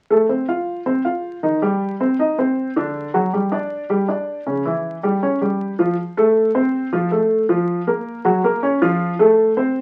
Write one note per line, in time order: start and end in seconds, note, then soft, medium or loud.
0.10 0.26 A3 medium
0.10 0.26 A4 medium
0.29 0.45 C4 medium
0.29 0.45 C5 medium
0.48 0.80 F4 medium
0.48 0.80 F5 medium
0.86 1.02 C4 medium
0.86 1.02 C5 medium
1.05 1.36 F4 soft
1.05 1.36 F5 medium
1.43 1.59 D#3 medium
1.43 1.59 D#4 medium
1.62 1.93 G3 medium
1.62 1.93 G4 medium
2.00 2.16 C4 medium
2.00 2.16 C5 medium
2.19 2.35 D#4 medium
2.19 2.35 D#5 medium
2.38 2.69 C4 medium
2.38 2.70 C5 medium
2.76 3.07 D3 medium
2.76 3.08 D4 medium
3.14 3.30 F#3 medium
3.14 3.30 F#4 medium
3.33 3.49 G3 medium
3.33 3.49 G4 medium
3.52 3.83 D4 medium
3.52 3.83 D5 medium
3.90 4.05 G3 medium
3.90 4.05 G4 medium
4.08 4.40 D4 medium
4.08 4.40 D5 medium
4.47 4.62 C#3 medium
4.47 4.62 C#4 medium
4.65 4.97 E3 medium
4.65 4.97 E4 medium
5.03 5.19 G3 medium
5.03 5.19 G4 medium
5.23 5.38 C#4 medium
5.23 5.38 C#5 medium
5.41 5.73 G3 medium
5.41 5.73 G4 medium
5.79 5.95 F3 medium
5.79 5.95 F4 medium
6.17 6.48 A3 medium
6.17 6.48 A4 medium
6.55 6.86 C4 medium
6.55 6.86 C5 medium
6.93 7.08 F3 medium
6.93 7.08 F4 medium
7.11 7.43 A3 medium
7.11 7.43 A4 medium
7.49 7.80 F3 medium
7.49 7.81 F4 medium
7.87 8.18 A#3 medium
7.87 8.18 A#4 medium
8.25 8.40 F#3 medium
8.25 8.41 F#4 medium
8.44 8.60 A#3 medium
8.44 8.60 A#4 medium
8.63 8.78 C#4 medium
8.63 8.78 C#5 medium
8.82 9.13 F3 medium
8.82 9.13 F4 medium
9.19 9.50 A3 medium
9.19 9.51 A4 medium
9.57 9.81 C4 medium
9.57 9.81 C5 medium